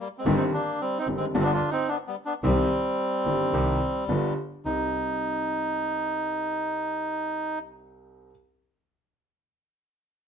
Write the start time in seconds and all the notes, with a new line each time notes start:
0.00 G3 A#3
0.18 G#3 C4
0.26 G1 G2 D#3 G3 C4 G4
0.36 C4 D#4
0.53 A#3 D4
0.81 G3 C4
0.99 C4 D#4
1.07 G1 G2 D#3 G3 C4 G4
1.17 G#3 C4
1.34 G1 G2 D3 G3 B3 D4 F4
1.39 C4
1.43 B3 D4
1.53 D4 F4
1.71 C4 D#4
1.88 B3 D4
2.07 G3 B3
2.25 B3 D4
2.43 C2 C3 D#3 G3 C4 G4
3.25 G1 G2 D#3 G3 C4 G4
3.52 C2 C3 D#3 G3 C4 G4
4.08 G1 G2 D3 G3 B3 F4
4.64 C2 G3 C4 D#4